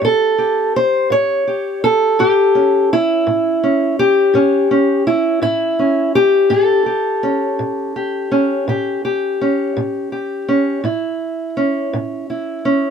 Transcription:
steel-string acoustic guitar
Already playing: C#4 G4
0.02 A2 A4
0.38 G4
0.76 C5
1.10 A2 C#5
1.47 G4
1.84 A4
2.19 A2 G4
2.55 C#4
2.93 E4
3.27 A2
3.63 C#4
3.99 G4
4.34 A2 C#4
4.71 C#4
5.07 E4
5.42 A2 E4
5.79 C#4
6.15 G4
6.50 A2 A4
6.86 G4
7.23 C#4
7.59 A2
7.96 G4
8.31 C#4
8.68 A2 G4
9.05 G4
9.41 C#4
9.77 A2
10.12 G4
10.48 C#4
10.84 A2 E4
11.57 C#4
11.93 A2
12.30 E4
12.65 C#4

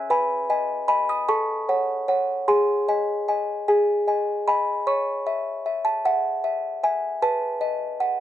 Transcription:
music box
0.10 B4 G#5 B5
0.50 D#5 G#5
0.88 D#5 G#5 B5
1.09 D#6
1.28 A4 A5 C#6
1.69 C#5 F#5
2.08 C#5 F#5
2.48 G#4 G#5 C6
2.88 D#5 G#5
3.28 D#5 G#5
3.68 G#4 G#5
4.08 D#5 G#5
4.48 D#5 G#5 B5
4.87 C#5 C#6
5.27 E5
5.66 E5
5.85 A5
6.05 E5 F#5
6.44 E5
6.83 E5 G#5
7.22 B4 A5
7.61 D#5
8.00 F#5

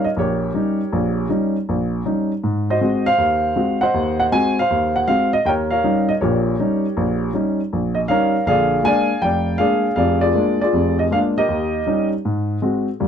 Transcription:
grand piano
Already playing: A#4 C#5
0.04 D#5
0.17 A#1 G4 A#4 C#5
0.54 G3 C#4 D#4
0.93 A#1
1.29 G3 C#4 D#4
1.69 A#1
2.05 G3 C#4 D#4
2.44 G#2
2.70 F#4 C5 D#5
2.81 G#3 C4 F#4
3.06 C5 F5
3.18 D#2
3.56 G#3 C4 F#4
3.81 C5 D#5 F#5
3.94 D#2
4.20 F#5
4.32 G#3 C4 F#4 G#5
4.59 C5 F5
4.71 D#2
4.96 F#5
5.08 G#3 C4 F#4 F5
5.33 D#5
5.45 D#2 A#4 C#5 G5
5.71 A#4 C#5 F5
5.84 G3 C#4 D#4
6.09 D#5
6.21 A#1 A#2 G4 A#4 C#5
6.59 G3 C#4 D#4
6.97 A#1
7.34 G3 C#4 D#4
7.73 A#1
7.95 D#5
8.08 G3 C#4 D#4 A#4 C#5 F5
8.46 A#1 D3 G#4 D5 F5
8.83 G#3 A#3 D4 D5 G#5
8.87 F5
9.22 F1 D5 G5
9.58 G#3 A#3 D4 G#4 D5 F5
9.96 F1 F2 G#4 D5 F5
10.21 F4 G#4 D5
10.35 G#3 A#3 D4
10.61 F4 G#4 D5
10.73 F1 F2
10.99 D#5
11.11 G#3 A#3 D4 F5
11.38 G4 A#4 D#5
11.49 D#2
11.86 G3 C#4 D#4
12.25 G#2
12.62 G#3 C4 F#4
13.00 D#2 G3

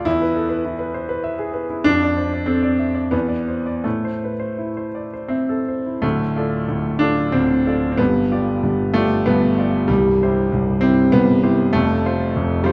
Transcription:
grand piano
0.05 E2 E4
0.22 B4
0.36 A4
0.49 B4
0.65 E4
0.79 B4
0.94 C5
1.09 B4
1.24 E5
1.39 G#4
1.54 B4
1.70 E4
1.84 F2 D4
2.03 D5
2.17 C5
2.33 D5
2.46 C4 A4
2.63 D5
2.79 E5
2.95 D5
3.11 E2 B3
3.29 D5
3.48 C5
3.66 D5
3.84 A2 A3
4.05 C5
4.24 B4
4.40 C5
4.58 E4
4.77 C5
4.95 D5
5.13 C5
5.28 C4 E5
5.49 A4
5.68 C5
5.86 E4
6.02 D1 D2 A3
6.36 F4 A4 D5
6.68 D1 D2
6.99 D4 F4 A4 D5
7.32 D1 D2 C4
7.67 F4 A4 D5
7.92 C4
7.98 G1 G2 B3
8.31 F4 G4 D5
8.63 G1 G2
8.94 A3 F4 G4 D5
9.26 G1 G2 B3
9.58 F4 G4 D5
9.88 C1 C2 G3
10.23 E4 G4 C5
10.52 C1 C2
10.81 C4 E4 G4 C5
11.12 C1 C2 B3
11.43 E4 G4 C5
11.73 F1 F2 A3
12.06 F4 C5
12.36 F1 F2
12.64 G3 F4 C5

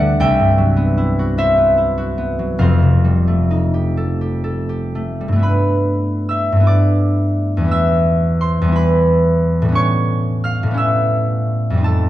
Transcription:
harp
Already playing: D2 G3 A3 E4 G4 A4 B4 D5 E5 F#5
0.00 D3
0.20 C2 E5 G5
0.39 G2
0.58 F#3
0.77 B3
0.97 E4
1.19 F#4
1.38 E4 C5 E5
1.57 B3
1.78 E4
1.98 F#4
2.18 B3
2.39 F#3
2.58 F1 F2 C5 F5
2.82 C3
3.04 G3
3.28 A3
3.51 D#4
3.74 G4
3.97 A4
4.21 G4
4.44 A4
4.69 G4
4.95 A3
5.21 G3
5.28 G2
5.32 A3 B3
5.39 E4 B5
5.43 B4
6.29 E5 E6
6.52 G2 A3
6.60 B3 E4
6.67 D5 D6
7.57 E2 G3
7.64 B3 E4
7.71 E5 E6
8.41 C5 C6
8.61 E2 G3
8.68 B3 E4
8.76 B4 B5
9.62 A2 G3
9.69 B3 C#4
9.75 C#5 C#6
10.44 F5 F6
10.63 A2 G3
10.71 B3 C#4
10.78 E5 E6
11.70 F2 G3
11.77 C4 D#4
11.84 A4 A5

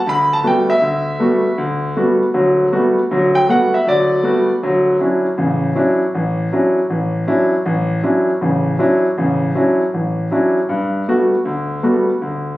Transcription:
grand piano
0.07 D2 B5
0.33 A5
0.44 G3 A3 B3 F#4 G5
0.70 E5
0.81 D2
1.20 G3 A3 B3 F#4
1.58 D2
1.97 G3 A3 B3 F#4
2.34 D2 F#3
2.72 G3 A3 B3 F#4
3.11 D2 F#3
3.35 G5
3.49 G3 A3 B3 F#4 F#5
3.74 E5
3.87 D2 F#3 D5
4.23 G3 A3 B3 F#4
4.63 D2 F#3
5.00 F#3 C#4 D4 E4
5.38 A1 C#3
5.75 F#3 C#4 D4 E4
6.15 A1
6.53 F#3 C#4 D4 E4
6.90 A1
7.27 F#3 C#4 D4 E4
7.66 A1
8.03 F#3 C#4 D4 E4
8.41 A1 C#3
8.79 F#3 C#4 D4 E4
9.18 A1 C#3
9.55 F#3 C#4 D4 E4
9.94 A1
10.31 F#3 C#4 D4 E4
10.69 G2
11.08 G3 A3 B3 F#4
11.45 D2
11.83 G3 A3 B3 F#4
12.22 D2

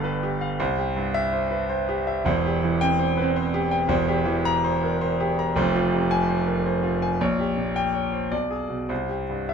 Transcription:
grand piano
Already playing: G1 G2 D3 G4 A4 B4 F5
0.04 B4
0.23 G4
0.41 F5
0.60 C2 C5
0.78 G4
0.96 G2
1.14 E5
1.33 C5
1.51 B4
1.69 C5
1.89 G4
2.07 E5
2.25 E1 E2 C5
2.46 G4
2.64 E3
2.81 C4 G5
2.99 C5
3.17 B4
3.22 C4
3.36 C5
3.54 G4
3.71 G5
3.88 E1 E2 C5
4.08 G4
4.25 E3
4.45 A#5
4.64 C5
4.83 A#4
5.01 C5
5.20 G4
5.39 A#5
5.56 F1 F2 C5
5.75 F4
5.93 C3
6.11 G#5
6.29 C5
6.48 A#4
6.66 C5
6.83 F4
7.02 G#5
7.21 A#1 C#5
7.39 G4
7.58 A#2
7.76 G5
7.94 C#5
8.13 C5
8.31 B1 D5
8.51 G#4
8.69 B2
8.89 C2 C5
9.09 G4
9.30 G2
9.49 E5

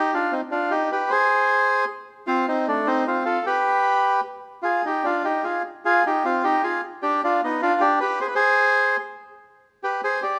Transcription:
bandoneon
Already playing: D#4 G4
0.14 D4 F4
0.32 C4 D#4
0.51 D4 F4
0.71 D#4 G4
0.92 G4 B4
1.10 G#4 C5
2.27 C4 F4
2.48 C4 D#4
2.68 A3 D4
2.87 C4 D#4
3.07 C4 F4
3.25 F4 A4
3.46 G4 B4
4.63 F4 G#4
4.85 D#4 G4
5.04 D4 F4
5.25 D#4 G4
5.44 F4 G#4
5.85 F4 G#4
6.06 D#4 G4
6.25 C4 F4
6.44 D#4 G4
6.63 F4 G#4
7.02 D4 G4
7.24 D4 F4
7.44 B3 D#4
7.62 D4 F4
7.81 D4 G4
8.00 G4 B4
8.21 G#4 C5
8.27 B4
8.35 G#4 C5
9.83 G4 B4
10.04 G#4 C5
10.22 G4 D5

